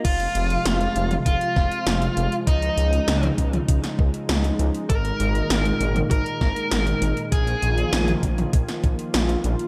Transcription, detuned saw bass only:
\new Staff \with { instrumentName = "Detuned saw bass" } { \clef bass \time 4/4 \key f \minor \tempo 4 = 99 f,,8 f,,8 f,,8 f,,8 f,,8 f,,8 f,,8 f,,8 | des,8 des,8 des,8 des,8 des,8 des,8 des,8 des,8 | aes,,8 aes,,8 aes,,8 aes,,8 aes,,8 aes,,8 aes,,8 aes,,8 | bes,,8 bes,,8 bes,,8 bes,,8 bes,,8 bes,,8 bes,,8 bes,,8 | }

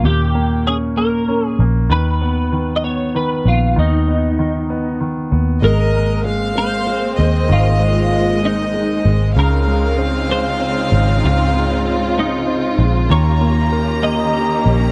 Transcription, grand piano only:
\new Staff \with { instrumentName = "Grand piano" } { \clef bass \time 6/8 \key aes \major \tempo 4. = 64 <bes, bes des'>8 bes8 des'8 bes8 des'8 bes8 | dis8 b8 dis8 b8 dis8 b8 | dis8 b8 dis8 b8 dis8 b8 | aes8 aes8 aes8 aes8 aes8 aes8 |
ees8 aes8 aes8 aes8 aes8 aes8 | des8 aes8 c'8 aes8 c'8 aes8 | aes,8 aes8 c'8 aes8 c'8 aes8 | ees8 bes8 bes'8 bes8 g'8 bes8 | }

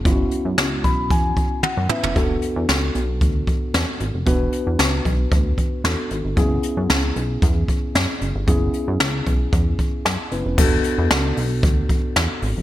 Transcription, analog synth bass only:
\new Staff \with { instrumentName = "Analog synth bass" } { \clef bass \time 4/4 \key e \mixolydian \tempo 4 = 114 fis,,8 r16 fis,16 cis,8 b,,8 e,8 r8. fis,16 r16 f,,16 | e,,8 r16 e,16 cis,8 b,,8 d,8 r8 e,16 r16 gis,,16 f,,16 | e,,8 r16 e,16 cis,8 b,,8 d,8 r8 e,16 r16 gis,,16 g,,16 | fis,,8 r16 fis,16 cis,8 b,,8 e,8 r8 fis,16 r16 fis,,16 g,,16 |
fis,,8 r16 fis,16 cis,8 b,,8 e,8 r8 fis,16 r16 fis,,16 f,,16 | e,,8 r16 e,16 cis,8 b,,8 d,8 r8 e,16 r16 gis,,16 f,,16 | }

